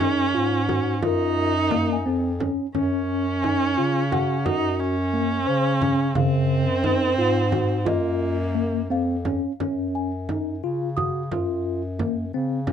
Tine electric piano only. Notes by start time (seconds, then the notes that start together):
0.01 D#4
0.35 F4
0.69 F#4
1.03 F4
1.71 A#3
2.06 C4
2.41 C#4
2.75 C#4
3.44 D#4
3.78 F4
4.12 F#4
4.46 F#4
5.14 A#3
5.47 C5
5.82 C#4
6.15 C#3
6.84 D#4
7.18 F4
7.52 F#4
7.85 F4
8.55 A#3
8.90 C4
9.26 C#4
9.61 C#4
10.29 D#4
10.64 F4
10.97 F#4
11.32 F4
11.99 A#3
12.34 C4
12.68 C#4